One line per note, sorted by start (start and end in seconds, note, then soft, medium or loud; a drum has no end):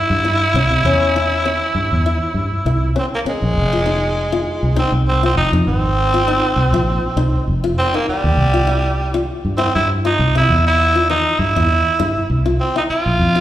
0.00 2.93 E4 loud
0.10 0.46 G2 medium
0.25 0.43 E4 medium
0.54 0.68 C2 medium
0.54 0.74 C#4 medium
0.70 0.81 C3 medium
0.84 1.59 E2 medium
0.84 1.45 C#4 medium
1.16 1.34 E4 medium
1.45 1.64 C#4 medium
1.75 1.88 G2 medium
1.92 2.17 E2 medium
2.06 2.24 E4 medium
2.34 2.48 G2 medium
2.52 muted fingered electric bass stroke soft
2.65 2.90 C2 medium
2.65 2.84 E4 medium
2.96 3.05 C4 medium
2.96 3.14 C#4 medium
3.15 3.20 A#3 medium
3.25 3.45 C#4 medium
3.25 muted fingered electric bass stroke soft
3.29 4.74 G#3 medium
3.42 3.53 A#1 medium
3.55 4.44 F1 loud
3.73 3.81 F4 medium
3.86 4.04 D#4 medium
4.32 4.51 F4 medium
4.63 4.74 C2 medium
4.76 4.92 C4 loud
4.76 4.95 D#4 medium
4.92 5.29 C2 loud
5.08 5.23 C4 medium
5.23 5.37 C4 loud
5.23 5.42 F4 medium
5.36 5.50 F1 loud
5.36 5.51 D#4 loud
5.52 5.64 F2 loud
5.52 5.72 D#4 medium
5.66 6.42 G#1 medium
5.66 7.44 C4 loud
6.14 6.22 F4 medium
6.28 6.46 D#4 medium
6.56 6.70 C2 medium
6.73 6.98 A#1 medium
6.73 6.92 F4 medium
7.16 7.31 C2 medium
7.16 7.36 D#4 medium
7.33 muted fingered electric bass stroke soft
7.47 7.72 F1 medium
7.64 7.82 F4 medium
7.78 7.97 C4 loud
7.94 8.08 A#3 loud
7.94 8.13 D#4 medium
8.08 9.25 G3 medium
8.08 muted fingered electric bass stroke soft
8.24 8.35 D#2 medium
8.37 9.26 C2 medium
8.54 8.62 F4 medium
8.67 8.86 E4 medium
9.14 9.33 F4 medium
9.45 9.56 G2 medium
9.57 9.73 C4 loud
9.57 9.77 E4 medium
9.75 10.11 G2 loud
9.75 9.89 E4 loud
10.05 10.33 D#4 loud
10.05 10.23 F4 medium
10.19 10.33 C2 loud
10.35 10.46 C3 medium
10.35 10.54 E4 medium
10.35 10.64 E4 loud
10.49 11.24 E2 medium
10.67 11.07 E4 loud
10.95 11.04 F4 medium
11.10 11.28 E3 medium
11.10 11.40 D#4 loud
11.39 11.53 G2 loud
11.39 12.29 E4 loud
11.56 11.81 E2 medium
11.56 11.75 E4 medium
12.00 12.13 G2 medium
12.00 12.18 E4 medium
12.17 muted fingered electric bass stroke soft
12.30 12.54 C2 loud
12.46 12.64 F4 medium
12.60 12.75 C4 medium
12.76 12.83 D#4 medium
12.76 12.94 E4 medium
12.90 13.40 F4 loud
12.90 muted fingered electric bass stroke soft
13.06 13.17 A#1 medium
13.19 13.40 F2 medium
13.35 13.40 F4 medium